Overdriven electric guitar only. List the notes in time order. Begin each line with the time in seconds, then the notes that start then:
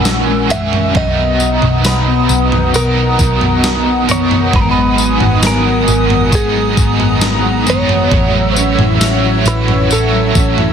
Already playing: A#2 E3 F#3 C#4 F#4 G#4
0.49 F#3 C#4 F#4 G#4
0.93 B2 D#3 F#3 B3
0.98 D#4
2.74 B2 D#3 F#3 B3 D#4 A#4
4.08 F#3 B3 D#4 A#4
4.51 G#2 D#3 F#3 B3
4.55 D#4 G#4
6.31 G#2 D#3 F#3 B3 D#4 G#4
7.66 F#3 B3 D#4 G#4
8.11 A3 E4 F#4 C#5
9.00 A3 E4 F#4 C#5
9.90 A3 E4 F#4 C#5